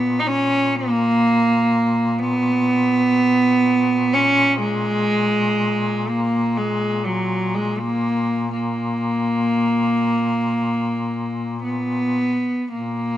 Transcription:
Already playing: duduk A#2, cello B3
0.19 cello D#4
0.27 cello C#4
0.75 cello A#3
2.19 cello B3
4.13 cello C#4
4.59 cello G#3
6.08 cello A#3
6.57 cello G#3
7.06 cello F#3
7.55 cello G#3
7.79 cello A#3
8.53 cello A#3
11.64 cello B3
12.71 duduk A#2, cello A#3

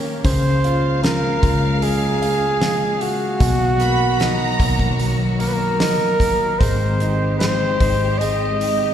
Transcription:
Already playing: fingered electric bass D#2, string section D#3 A#3 C#4 G4, grand piano A#3 C#4
0.24 fingered electric bass C#2, grand piano C#3, string section C#3 G#3 A#3 F5, flugelhorn C5, kick, hi-hat pedal, open hi-hat
0.64 grand piano F4, hi-hat pedal, open hi-hat
1.03 grand piano C#3, flugelhorn A#4, snare, hi-hat pedal, open hi-hat
1.42 fingered electric bass C#2, grand piano F4, kick, hi-hat pedal, open hi-hat
1.82 grand piano G#3, flugelhorn G#4, hi-hat pedal, open hi-hat
2.22 grand piano F5, hi-hat pedal, open hi-hat
2.61 grand piano G#3, snare, hi-hat pedal, open hi-hat
3.01 flugelhorn F#4, grand piano G#4, hi-hat pedal, open hi-hat
3.40 fingered electric bass B1, grand piano B2, string section B2 D#3 F#3 F#4, kick, hi-hat pedal, open hi-hat
3.79 grand piano A#3, violin section B5, hi-hat pedal, open hi-hat
4.19 grand piano D#4, violin section A#5, snare, hi-hat pedal, open hi-hat
4.60 fingered electric bass B1, grand piano A#3, kick, hi-hat pedal, open hi-hat
4.79 kick
4.99 grand piano F#3, hi-hat pedal, open hi-hat
5.39 grand piano A#3, flugelhorn A#4, hi-hat pedal, open hi-hat
5.48 flugelhorn B4
5.54 flugelhorn A#4
5.79 grand piano D#4, snare, hi-hat pedal, open hi-hat
6.20 grand piano A#3, kick, hi-hat pedal, open hi-hat
6.59 fingered electric bass G#1, string section G#3 C4 G4, grand piano G#3, flugelhorn C5, kick, hi-hat pedal, open hi-hat
7.00 grand piano D#4, hi-hat pedal, open hi-hat
7.39 grand piano G#3, flugelhorn C5, snare, hi-hat pedal, open hi-hat
7.80 fingered electric bass G#1, grand piano D#4, kick, hi-hat pedal, open hi-hat
8.19 grand piano G#3, flugelhorn D#5, hi-hat pedal, open hi-hat
8.60 grand piano D#4, hi-hat pedal, open hi-hat

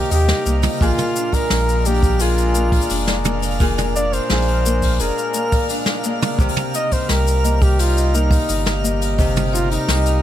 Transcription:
Already playing: harmonium C3 G3 D#4 A#4, harp C3 A#3 D#4 G4, flugelhorn G4, synth texture F5 F6
0.10 sub bass D#2, harp D#4, flugelhorn G4, kalimba D#5, open hi-hat, shaker
0.28 snare, open hi-hat, shaker
0.46 sub bass C2, harp A#3, shaker
0.63 kalimba D#5, mid tom, open hi-hat, shaker
0.81 sub bass A#1, harmonium A#2, harp A#2 G#4, flugelhorn F4, kick, open hi-hat, shaker
0.98 kalimba A#4, mid tom, open hi-hat, shaker
1.16 harp D4, shaker
1.31 harmonium G#3, flugelhorn A#4, kalimba D5, kick, open hi-hat, shaker
1.50 sub bass A#1, snare, open hi-hat, shaker
1.68 open hi-hat, shaker
1.73 open hi-hat
1.77 open hi-hat
1.81 open hi-hat
1.85 harp A#3, harmonium D4, flugelhorn G4, kalimba D5, open hi-hat, shaker
1.90 open hi-hat
1.94 open hi-hat
1.99 open hi-hat
2.03 kick, open hi-hat, shaker
2.20 flugelhorn F4, harp G#4, kalimba A#4, open hi-hat, shaker
2.38 shaker
2.55 harp A#3, kalimba D5, shaker
2.72 kick, open hi-hat
2.82 shaker
2.90 sub bass F1, harp D4, open hi-hat, shaker
3.07 kalimba D5, snare, open hi-hat, shaker
3.25 harp A#3, mid tom, shaker
3.42 kalimba A#4, open hi-hat, shaker
3.51 open hi-hat
3.60 harp A#2 G#4, kick, open hi-hat, shaker
3.68 open hi-hat
3.78 kalimba D5, mid tom, open hi-hat, shaker
3.96 harp D4, flugelhorn D5, shaker
4.13 flugelhorn C5, open hi-hat, shaker
4.30 sub bass A#1, harp G#4, kalimba D5, snare, open hi-hat, shaker
4.36 open hi-hat
4.42 open hi-hat
4.48 open hi-hat
4.66 harp A#3, kalimba A#4, shaker
4.82 kick, open hi-hat, shaker
5.00 sub bass F1, harp G#4, flugelhorn A#4, kalimba D5, open hi-hat, shaker
5.18 shaker
5.34 harp A#3, shaker
5.52 kalimba D5, kick, open hi-hat, shaker
5.69 harp D4, open hi-hat, shaker
5.86 kalimba A#4, snare, shaker
6.04 harp A#3, shaker
6.22 kalimba D5, mid tom, open hi-hat, shaker
6.39 sub bass C2, harmonium C3, harp C3 G4, kick, shaker
6.49 open hi-hat
6.57 mid tom, shaker
6.74 harp D#4, kalimba D#5, flugelhorn D#5, shaker
6.87 harmonium G3, open hi-hat
6.92 flugelhorn C5, kick, shaker
7.09 sub bass C2, harp G4, flugelhorn A#4, kalimba F5, snare, open hi-hat, shaker
7.26 open hi-hat, shaker
7.44 harp A#3, kalimba D#5, shaker
7.62 flugelhorn G4, kick, open hi-hat, shaker
7.79 harmonium D#4, flugelhorn F4, harp G4, open hi-hat, shaker
7.97 kalimba D#5, shaker
8.14 harp A#3, flugelhorn D#4, shaker
8.31 kalimba F5, kick, open hi-hat, shaker
8.49 sub bass G1, harp D#4, open hi-hat, shaker
8.66 kalimba D#5, snare, open hi-hat, shaker
8.84 harp A#3, shaker
9.02 open hi-hat, shaker
9.18 harp C3 G4, kalimba D#5, kick, open hi-hat, shaker
9.36 mid tom, open hi-hat, shaker
9.41 open hi-hat
9.45 open hi-hat
9.49 harp D#4, flugelhorn F4, kalimba F5, open hi-hat
9.54 open hi-hat, shaker
9.59 open hi-hat
9.63 open hi-hat
9.67 flugelhorn D#4, open hi-hat
9.71 open hi-hat, shaker
9.88 sub bass C2, harp G4, kalimba D#5, snare, open hi-hat, shaker
10.06 open hi-hat, shaker

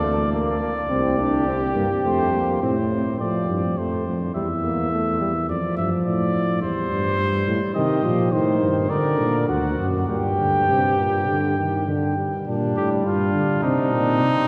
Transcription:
Already playing: bass trombone D2, flugelhorn A4, trumpet D5
0.03 trombone A3
0.32 trombone A#3, trumpet D5
0.61 trombone A#3
0.89 bass trombone C2, trombone C4, flugelhorn G4
1.18 trombone D4
1.47 trombone C4
1.76 bass trombone G2, trombone A#3
2.05 bass trombone F2, trombone A3, trumpet C5
2.34 trombone A#3
2.62 bass trombone A2, trombone C4, trumpet C5
2.92 trombone C4
3.20 bass trombone A2, trombone F3, trumpet D5
3.49 bass trombone G2
3.78 bass trombone F2, trombone A3, trumpet C5
4.07 trombone F3
4.35 bass trombone E2, trombone G3, trumpet E5
4.64 trombone A#3
4.92 trombone A3
5.21 trombone G3
5.49 bass trombone F2, trombone F3, trumpet D5
5.77 bass trombone G2, trumpet E5
6.06 bass trombone A2, trumpet D5
6.62 bass trombone E2, trombone G3, trumpet C5
6.91 bass trombone G2
7.19 bass trombone G2
7.47 bass trombone A2
7.75 bass trombone C3, trombone D#3, flugelhorn G4, trumpet D#5
8.04 bass trombone A#2, trombone F3
8.32 bass trombone A2, trombone D#3, trumpet C5, flugelhorn C5
8.61 bass trombone G2
8.90 bass trombone D3, trombone D3, flugelhorn A#4, trumpet D5
9.19 bass trombone A#2
9.48 bass trombone D2, flugelhorn F#4, trumpet F#5
9.78 bass trombone F#2
10.08 bass trombone G2, trombone A#2, flugelhorn G4, trumpet G5
10.39 trombone D3
10.69 trombone C3
10.99 trombone A#2
11.28 trombone D3
11.58 trombone D#3
11.88 trombone D3
12.18 trombone G3
12.47 bass trombone A#2, trombone G3, flugelhorn D4
12.76 bass trombone A2, trumpet G4
13.06 bass trombone G2, flugelhorn D4, trumpet F4
13.35 bass trombone D3
13.63 bass trombone C3, trombone C4, trumpet D#4
13.92 bass trombone A#2
14.21 bass trombone C3

